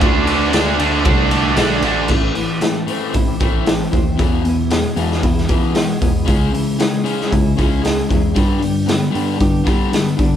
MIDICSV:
0, 0, Header, 1, 5, 480
1, 0, Start_track
1, 0, Tempo, 521286
1, 18, Time_signature, 4, 2, 24, 8
1, 9545, End_track
2, 0, Start_track
2, 0, Title_t, "Clean electric guitar"
2, 0, Program_c, 0, 27
2, 1936, Note_on_c, 0, 45, 70
2, 2162, Note_on_c, 0, 52, 70
2, 2419, Note_on_c, 0, 57, 72
2, 2660, Note_on_c, 0, 60, 69
2, 2894, Note_on_c, 0, 64, 74
2, 3121, Note_off_c, 0, 60, 0
2, 3132, Note_on_c, 0, 60, 66
2, 3135, Note_off_c, 0, 45, 0
2, 3371, Note_off_c, 0, 57, 0
2, 3382, Note_on_c, 0, 57, 80
2, 3602, Note_off_c, 0, 60, 0
2, 3613, Note_on_c, 0, 60, 66
2, 3854, Note_off_c, 0, 60, 0
2, 3859, Note_off_c, 0, 57, 0
2, 3859, Note_on_c, 0, 40, 70
2, 4097, Note_off_c, 0, 52, 0
2, 4101, Note_on_c, 0, 52, 63
2, 4335, Note_on_c, 0, 56, 67
2, 4580, Note_on_c, 0, 59, 68
2, 4815, Note_off_c, 0, 64, 0
2, 4819, Note_on_c, 0, 64, 74
2, 5049, Note_off_c, 0, 59, 0
2, 5058, Note_off_c, 0, 40, 0
2, 5060, Note_on_c, 0, 59, 67
2, 5273, Note_off_c, 0, 56, 0
2, 5284, Note_on_c, 0, 56, 74
2, 5299, Note_off_c, 0, 52, 0
2, 5522, Note_off_c, 0, 59, 0
2, 5533, Note_on_c, 0, 59, 65
2, 5769, Note_on_c, 0, 49, 70
2, 5771, Note_off_c, 0, 56, 0
2, 5775, Note_off_c, 0, 59, 0
2, 5779, Note_off_c, 0, 64, 0
2, 6013, Note_on_c, 0, 52, 71
2, 6255, Note_on_c, 0, 56, 69
2, 6491, Note_on_c, 0, 61, 74
2, 6731, Note_on_c, 0, 64, 78
2, 6950, Note_off_c, 0, 61, 0
2, 6961, Note_on_c, 0, 61, 71
2, 6975, Note_off_c, 0, 49, 0
2, 7186, Note_off_c, 0, 56, 0
2, 7197, Note_on_c, 0, 56, 73
2, 7217, Note_off_c, 0, 52, 0
2, 7445, Note_off_c, 0, 61, 0
2, 7456, Note_on_c, 0, 61, 68
2, 7688, Note_off_c, 0, 56, 0
2, 7696, Note_off_c, 0, 64, 0
2, 7697, Note_on_c, 0, 43, 79
2, 7698, Note_off_c, 0, 61, 0
2, 7930, Note_on_c, 0, 55, 68
2, 8172, Note_on_c, 0, 59, 72
2, 8415, Note_on_c, 0, 62, 67
2, 8661, Note_on_c, 0, 67, 70
2, 8886, Note_off_c, 0, 62, 0
2, 8897, Note_on_c, 0, 62, 64
2, 8900, Note_off_c, 0, 43, 0
2, 9128, Note_off_c, 0, 59, 0
2, 9136, Note_off_c, 0, 55, 0
2, 9139, Note_on_c, 0, 59, 74
2, 9372, Note_off_c, 0, 62, 0
2, 9383, Note_on_c, 0, 62, 72
2, 9545, Note_off_c, 0, 59, 0
2, 9545, Note_off_c, 0, 62, 0
2, 9545, Note_off_c, 0, 67, 0
2, 9545, End_track
3, 0, Start_track
3, 0, Title_t, "Distorted electric guitar"
3, 0, Program_c, 1, 30
3, 0, Note_on_c, 1, 50, 102
3, 4, Note_on_c, 1, 57, 97
3, 9, Note_on_c, 1, 62, 102
3, 219, Note_off_c, 1, 50, 0
3, 222, Note_off_c, 1, 57, 0
3, 230, Note_on_c, 1, 50, 91
3, 233, Note_off_c, 1, 62, 0
3, 233, Note_on_c, 1, 57, 98
3, 244, Note_on_c, 1, 62, 93
3, 460, Note_off_c, 1, 50, 0
3, 465, Note_off_c, 1, 57, 0
3, 469, Note_off_c, 1, 62, 0
3, 471, Note_on_c, 1, 50, 99
3, 476, Note_on_c, 1, 57, 106
3, 480, Note_on_c, 1, 62, 102
3, 710, Note_off_c, 1, 50, 0
3, 715, Note_off_c, 1, 62, 0
3, 719, Note_off_c, 1, 57, 0
3, 721, Note_on_c, 1, 50, 83
3, 726, Note_on_c, 1, 62, 95
3, 730, Note_on_c, 1, 57, 96
3, 945, Note_off_c, 1, 50, 0
3, 952, Note_off_c, 1, 57, 0
3, 956, Note_on_c, 1, 50, 101
3, 959, Note_off_c, 1, 62, 0
3, 964, Note_on_c, 1, 57, 110
3, 970, Note_on_c, 1, 62, 112
3, 1188, Note_off_c, 1, 50, 0
3, 1191, Note_off_c, 1, 62, 0
3, 1194, Note_off_c, 1, 57, 0
3, 1199, Note_on_c, 1, 50, 87
3, 1202, Note_on_c, 1, 62, 96
3, 1205, Note_on_c, 1, 57, 86
3, 1435, Note_off_c, 1, 50, 0
3, 1439, Note_off_c, 1, 57, 0
3, 1446, Note_on_c, 1, 50, 119
3, 1448, Note_off_c, 1, 62, 0
3, 1450, Note_on_c, 1, 57, 107
3, 1459, Note_on_c, 1, 62, 113
3, 1670, Note_off_c, 1, 50, 0
3, 1676, Note_off_c, 1, 62, 0
3, 1679, Note_off_c, 1, 57, 0
3, 1681, Note_on_c, 1, 50, 84
3, 1687, Note_on_c, 1, 62, 81
3, 1690, Note_on_c, 1, 57, 95
3, 1913, Note_off_c, 1, 50, 0
3, 1914, Note_off_c, 1, 57, 0
3, 1916, Note_off_c, 1, 62, 0
3, 1917, Note_on_c, 1, 45, 81
3, 1921, Note_on_c, 1, 52, 89
3, 1925, Note_on_c, 1, 57, 104
3, 2144, Note_off_c, 1, 45, 0
3, 2153, Note_off_c, 1, 52, 0
3, 2155, Note_off_c, 1, 57, 0
3, 2155, Note_on_c, 1, 45, 69
3, 2162, Note_on_c, 1, 52, 70
3, 2380, Note_off_c, 1, 45, 0
3, 2384, Note_off_c, 1, 52, 0
3, 2404, Note_on_c, 1, 45, 67
3, 2409, Note_on_c, 1, 52, 86
3, 2625, Note_off_c, 1, 45, 0
3, 2627, Note_off_c, 1, 52, 0
3, 2638, Note_on_c, 1, 45, 91
3, 2647, Note_on_c, 1, 52, 93
3, 2654, Note_on_c, 1, 57, 81
3, 2871, Note_off_c, 1, 45, 0
3, 2876, Note_off_c, 1, 52, 0
3, 2880, Note_off_c, 1, 57, 0
3, 2893, Note_on_c, 1, 52, 79
3, 2895, Note_on_c, 1, 45, 67
3, 3109, Note_off_c, 1, 52, 0
3, 3110, Note_off_c, 1, 45, 0
3, 3126, Note_on_c, 1, 45, 78
3, 3131, Note_on_c, 1, 52, 82
3, 3141, Note_on_c, 1, 57, 97
3, 3346, Note_off_c, 1, 45, 0
3, 3354, Note_off_c, 1, 52, 0
3, 3357, Note_on_c, 1, 45, 72
3, 3363, Note_off_c, 1, 57, 0
3, 3365, Note_on_c, 1, 52, 96
3, 3582, Note_off_c, 1, 45, 0
3, 3586, Note_off_c, 1, 52, 0
3, 3603, Note_on_c, 1, 45, 66
3, 3606, Note_on_c, 1, 52, 83
3, 3825, Note_off_c, 1, 45, 0
3, 3826, Note_off_c, 1, 52, 0
3, 3837, Note_on_c, 1, 40, 89
3, 3848, Note_on_c, 1, 47, 87
3, 3853, Note_on_c, 1, 52, 85
3, 4072, Note_off_c, 1, 40, 0
3, 4077, Note_off_c, 1, 47, 0
3, 4079, Note_off_c, 1, 52, 0
3, 4096, Note_on_c, 1, 40, 72
3, 4101, Note_on_c, 1, 47, 80
3, 4312, Note_off_c, 1, 40, 0
3, 4314, Note_off_c, 1, 47, 0
3, 4331, Note_on_c, 1, 40, 72
3, 4338, Note_on_c, 1, 47, 83
3, 4549, Note_off_c, 1, 40, 0
3, 4553, Note_off_c, 1, 47, 0
3, 4564, Note_on_c, 1, 40, 94
3, 4573, Note_on_c, 1, 47, 82
3, 4576, Note_on_c, 1, 52, 91
3, 4796, Note_off_c, 1, 40, 0
3, 4800, Note_off_c, 1, 47, 0
3, 4801, Note_off_c, 1, 52, 0
3, 4818, Note_on_c, 1, 40, 78
3, 4818, Note_on_c, 1, 47, 90
3, 5031, Note_off_c, 1, 40, 0
3, 5033, Note_off_c, 1, 47, 0
3, 5042, Note_on_c, 1, 40, 79
3, 5050, Note_on_c, 1, 47, 90
3, 5060, Note_on_c, 1, 52, 92
3, 5275, Note_off_c, 1, 40, 0
3, 5279, Note_off_c, 1, 47, 0
3, 5284, Note_off_c, 1, 52, 0
3, 5285, Note_on_c, 1, 40, 85
3, 5288, Note_on_c, 1, 47, 95
3, 5507, Note_off_c, 1, 40, 0
3, 5509, Note_off_c, 1, 47, 0
3, 5534, Note_on_c, 1, 40, 71
3, 5539, Note_on_c, 1, 47, 74
3, 5751, Note_off_c, 1, 47, 0
3, 5752, Note_off_c, 1, 40, 0
3, 5754, Note_on_c, 1, 56, 91
3, 5755, Note_on_c, 1, 49, 82
3, 5764, Note_on_c, 1, 61, 96
3, 5991, Note_off_c, 1, 56, 0
3, 5992, Note_off_c, 1, 49, 0
3, 5996, Note_off_c, 1, 61, 0
3, 6005, Note_on_c, 1, 56, 73
3, 6009, Note_on_c, 1, 49, 69
3, 6228, Note_off_c, 1, 56, 0
3, 6229, Note_off_c, 1, 49, 0
3, 6248, Note_on_c, 1, 49, 70
3, 6253, Note_on_c, 1, 56, 76
3, 6467, Note_off_c, 1, 49, 0
3, 6472, Note_off_c, 1, 56, 0
3, 6478, Note_on_c, 1, 49, 86
3, 6488, Note_on_c, 1, 56, 90
3, 6490, Note_on_c, 1, 61, 106
3, 6714, Note_off_c, 1, 49, 0
3, 6719, Note_off_c, 1, 56, 0
3, 6720, Note_off_c, 1, 61, 0
3, 6737, Note_on_c, 1, 49, 82
3, 6743, Note_on_c, 1, 56, 84
3, 6954, Note_off_c, 1, 49, 0
3, 6957, Note_off_c, 1, 56, 0
3, 6968, Note_on_c, 1, 49, 81
3, 6977, Note_on_c, 1, 56, 85
3, 6981, Note_on_c, 1, 61, 91
3, 7199, Note_off_c, 1, 49, 0
3, 7204, Note_off_c, 1, 56, 0
3, 7206, Note_off_c, 1, 61, 0
3, 7213, Note_on_c, 1, 49, 86
3, 7218, Note_on_c, 1, 56, 90
3, 7432, Note_off_c, 1, 49, 0
3, 7435, Note_off_c, 1, 56, 0
3, 7448, Note_on_c, 1, 49, 65
3, 7452, Note_on_c, 1, 56, 81
3, 7670, Note_off_c, 1, 49, 0
3, 7672, Note_off_c, 1, 56, 0
3, 7683, Note_on_c, 1, 43, 84
3, 7683, Note_on_c, 1, 50, 91
3, 7696, Note_on_c, 1, 55, 104
3, 7905, Note_off_c, 1, 43, 0
3, 7907, Note_off_c, 1, 50, 0
3, 7916, Note_on_c, 1, 43, 70
3, 7919, Note_on_c, 1, 50, 71
3, 7924, Note_off_c, 1, 55, 0
3, 8144, Note_off_c, 1, 43, 0
3, 8145, Note_off_c, 1, 50, 0
3, 8158, Note_on_c, 1, 50, 80
3, 8159, Note_on_c, 1, 43, 73
3, 8372, Note_off_c, 1, 43, 0
3, 8383, Note_off_c, 1, 50, 0
3, 8384, Note_on_c, 1, 43, 82
3, 8394, Note_on_c, 1, 50, 86
3, 8394, Note_on_c, 1, 55, 89
3, 8621, Note_off_c, 1, 43, 0
3, 8626, Note_off_c, 1, 50, 0
3, 8632, Note_on_c, 1, 43, 76
3, 8633, Note_off_c, 1, 55, 0
3, 8637, Note_on_c, 1, 50, 79
3, 8862, Note_off_c, 1, 43, 0
3, 8865, Note_off_c, 1, 50, 0
3, 8874, Note_on_c, 1, 43, 85
3, 8884, Note_on_c, 1, 50, 86
3, 8896, Note_on_c, 1, 55, 100
3, 9113, Note_off_c, 1, 43, 0
3, 9118, Note_off_c, 1, 50, 0
3, 9124, Note_off_c, 1, 55, 0
3, 9128, Note_on_c, 1, 43, 75
3, 9136, Note_on_c, 1, 50, 87
3, 9351, Note_off_c, 1, 43, 0
3, 9355, Note_off_c, 1, 50, 0
3, 9362, Note_on_c, 1, 43, 65
3, 9365, Note_on_c, 1, 50, 75
3, 9545, Note_off_c, 1, 43, 0
3, 9545, Note_off_c, 1, 50, 0
3, 9545, End_track
4, 0, Start_track
4, 0, Title_t, "Tine electric piano"
4, 0, Program_c, 2, 4
4, 15, Note_on_c, 2, 38, 114
4, 972, Note_on_c, 2, 36, 97
4, 974, Note_off_c, 2, 38, 0
4, 1437, Note_on_c, 2, 35, 83
4, 1453, Note_off_c, 2, 36, 0
4, 1661, Note_off_c, 2, 35, 0
4, 1677, Note_on_c, 2, 33, 79
4, 1900, Note_off_c, 2, 33, 0
4, 1925, Note_on_c, 2, 33, 94
4, 2118, Note_off_c, 2, 33, 0
4, 2893, Note_on_c, 2, 33, 103
4, 3083, Note_off_c, 2, 33, 0
4, 3133, Note_on_c, 2, 33, 71
4, 3513, Note_off_c, 2, 33, 0
4, 3616, Note_on_c, 2, 39, 91
4, 3805, Note_off_c, 2, 39, 0
4, 3859, Note_on_c, 2, 40, 96
4, 4426, Note_off_c, 2, 40, 0
4, 4566, Note_on_c, 2, 40, 97
4, 4760, Note_off_c, 2, 40, 0
4, 4823, Note_on_c, 2, 40, 93
4, 5058, Note_on_c, 2, 52, 78
4, 5060, Note_off_c, 2, 40, 0
4, 5437, Note_off_c, 2, 52, 0
4, 5541, Note_on_c, 2, 40, 76
4, 5729, Note_off_c, 2, 40, 0
4, 5780, Note_on_c, 2, 37, 102
4, 5969, Note_off_c, 2, 37, 0
4, 6740, Note_on_c, 2, 37, 105
4, 6929, Note_off_c, 2, 37, 0
4, 6981, Note_on_c, 2, 37, 87
4, 7360, Note_off_c, 2, 37, 0
4, 7465, Note_on_c, 2, 40, 91
4, 7652, Note_off_c, 2, 40, 0
4, 7696, Note_on_c, 2, 43, 97
4, 8266, Note_off_c, 2, 43, 0
4, 8421, Note_on_c, 2, 43, 96
4, 8610, Note_off_c, 2, 43, 0
4, 8655, Note_on_c, 2, 43, 88
4, 8898, Note_off_c, 2, 43, 0
4, 8902, Note_on_c, 2, 55, 83
4, 9281, Note_off_c, 2, 55, 0
4, 9385, Note_on_c, 2, 43, 80
4, 9545, Note_off_c, 2, 43, 0
4, 9545, End_track
5, 0, Start_track
5, 0, Title_t, "Drums"
5, 9, Note_on_c, 9, 51, 86
5, 16, Note_on_c, 9, 36, 97
5, 101, Note_off_c, 9, 51, 0
5, 108, Note_off_c, 9, 36, 0
5, 251, Note_on_c, 9, 51, 72
5, 343, Note_off_c, 9, 51, 0
5, 489, Note_on_c, 9, 51, 108
5, 498, Note_on_c, 9, 38, 127
5, 581, Note_off_c, 9, 51, 0
5, 590, Note_off_c, 9, 38, 0
5, 732, Note_on_c, 9, 51, 82
5, 824, Note_off_c, 9, 51, 0
5, 966, Note_on_c, 9, 51, 100
5, 973, Note_on_c, 9, 36, 116
5, 1058, Note_off_c, 9, 51, 0
5, 1065, Note_off_c, 9, 36, 0
5, 1207, Note_on_c, 9, 51, 88
5, 1299, Note_off_c, 9, 51, 0
5, 1441, Note_on_c, 9, 51, 113
5, 1450, Note_on_c, 9, 38, 110
5, 1533, Note_off_c, 9, 51, 0
5, 1542, Note_off_c, 9, 38, 0
5, 1680, Note_on_c, 9, 51, 73
5, 1772, Note_off_c, 9, 51, 0
5, 1916, Note_on_c, 9, 49, 101
5, 1930, Note_on_c, 9, 36, 87
5, 2008, Note_off_c, 9, 49, 0
5, 2022, Note_off_c, 9, 36, 0
5, 2166, Note_on_c, 9, 46, 53
5, 2258, Note_off_c, 9, 46, 0
5, 2405, Note_on_c, 9, 46, 67
5, 2414, Note_on_c, 9, 38, 105
5, 2497, Note_off_c, 9, 46, 0
5, 2507, Note_off_c, 9, 38, 0
5, 2650, Note_on_c, 9, 46, 54
5, 2742, Note_off_c, 9, 46, 0
5, 2891, Note_on_c, 9, 46, 69
5, 2896, Note_on_c, 9, 36, 76
5, 2983, Note_off_c, 9, 46, 0
5, 2988, Note_off_c, 9, 36, 0
5, 3134, Note_on_c, 9, 46, 49
5, 3137, Note_on_c, 9, 36, 87
5, 3226, Note_off_c, 9, 46, 0
5, 3229, Note_off_c, 9, 36, 0
5, 3373, Note_on_c, 9, 46, 72
5, 3383, Note_on_c, 9, 38, 110
5, 3466, Note_off_c, 9, 46, 0
5, 3475, Note_off_c, 9, 38, 0
5, 3620, Note_on_c, 9, 36, 77
5, 3627, Note_on_c, 9, 46, 49
5, 3712, Note_off_c, 9, 36, 0
5, 3719, Note_off_c, 9, 46, 0
5, 3859, Note_on_c, 9, 46, 59
5, 3860, Note_on_c, 9, 36, 100
5, 3951, Note_off_c, 9, 46, 0
5, 3952, Note_off_c, 9, 36, 0
5, 4098, Note_on_c, 9, 46, 47
5, 4190, Note_off_c, 9, 46, 0
5, 4333, Note_on_c, 9, 46, 72
5, 4342, Note_on_c, 9, 38, 105
5, 4425, Note_off_c, 9, 46, 0
5, 4434, Note_off_c, 9, 38, 0
5, 4576, Note_on_c, 9, 46, 53
5, 4669, Note_off_c, 9, 46, 0
5, 4714, Note_on_c, 9, 38, 32
5, 4806, Note_off_c, 9, 38, 0
5, 4816, Note_on_c, 9, 46, 76
5, 4819, Note_on_c, 9, 36, 85
5, 4908, Note_off_c, 9, 46, 0
5, 4911, Note_off_c, 9, 36, 0
5, 4952, Note_on_c, 9, 38, 31
5, 5044, Note_off_c, 9, 38, 0
5, 5053, Note_on_c, 9, 46, 57
5, 5058, Note_on_c, 9, 36, 92
5, 5145, Note_off_c, 9, 46, 0
5, 5150, Note_off_c, 9, 36, 0
5, 5294, Note_on_c, 9, 46, 77
5, 5303, Note_on_c, 9, 38, 113
5, 5386, Note_off_c, 9, 46, 0
5, 5395, Note_off_c, 9, 38, 0
5, 5541, Note_on_c, 9, 36, 80
5, 5542, Note_on_c, 9, 46, 59
5, 5633, Note_off_c, 9, 36, 0
5, 5634, Note_off_c, 9, 46, 0
5, 5779, Note_on_c, 9, 46, 69
5, 5781, Note_on_c, 9, 36, 93
5, 5871, Note_off_c, 9, 46, 0
5, 5873, Note_off_c, 9, 36, 0
5, 6027, Note_on_c, 9, 46, 52
5, 6119, Note_off_c, 9, 46, 0
5, 6258, Note_on_c, 9, 46, 77
5, 6267, Note_on_c, 9, 38, 105
5, 6350, Note_off_c, 9, 46, 0
5, 6359, Note_off_c, 9, 38, 0
5, 6500, Note_on_c, 9, 46, 59
5, 6592, Note_off_c, 9, 46, 0
5, 6639, Note_on_c, 9, 38, 30
5, 6731, Note_off_c, 9, 38, 0
5, 6745, Note_on_c, 9, 36, 84
5, 6750, Note_on_c, 9, 46, 68
5, 6837, Note_off_c, 9, 36, 0
5, 6842, Note_off_c, 9, 46, 0
5, 6986, Note_on_c, 9, 36, 84
5, 6989, Note_on_c, 9, 46, 55
5, 7078, Note_off_c, 9, 36, 0
5, 7081, Note_off_c, 9, 46, 0
5, 7226, Note_on_c, 9, 46, 77
5, 7235, Note_on_c, 9, 38, 100
5, 7318, Note_off_c, 9, 46, 0
5, 7327, Note_off_c, 9, 38, 0
5, 7463, Note_on_c, 9, 36, 78
5, 7467, Note_on_c, 9, 46, 52
5, 7555, Note_off_c, 9, 36, 0
5, 7559, Note_off_c, 9, 46, 0
5, 7696, Note_on_c, 9, 46, 63
5, 7701, Note_on_c, 9, 36, 94
5, 7788, Note_off_c, 9, 46, 0
5, 7793, Note_off_c, 9, 36, 0
5, 7941, Note_on_c, 9, 46, 53
5, 8033, Note_off_c, 9, 46, 0
5, 8182, Note_on_c, 9, 46, 83
5, 8191, Note_on_c, 9, 38, 105
5, 8274, Note_off_c, 9, 46, 0
5, 8283, Note_off_c, 9, 38, 0
5, 8427, Note_on_c, 9, 46, 59
5, 8519, Note_off_c, 9, 46, 0
5, 8659, Note_on_c, 9, 46, 70
5, 8661, Note_on_c, 9, 36, 84
5, 8751, Note_off_c, 9, 46, 0
5, 8753, Note_off_c, 9, 36, 0
5, 8902, Note_on_c, 9, 36, 85
5, 8904, Note_on_c, 9, 46, 57
5, 8994, Note_off_c, 9, 36, 0
5, 8996, Note_off_c, 9, 46, 0
5, 9146, Note_on_c, 9, 46, 84
5, 9155, Note_on_c, 9, 38, 108
5, 9238, Note_off_c, 9, 46, 0
5, 9247, Note_off_c, 9, 38, 0
5, 9382, Note_on_c, 9, 46, 60
5, 9383, Note_on_c, 9, 36, 85
5, 9474, Note_off_c, 9, 46, 0
5, 9475, Note_off_c, 9, 36, 0
5, 9545, End_track
0, 0, End_of_file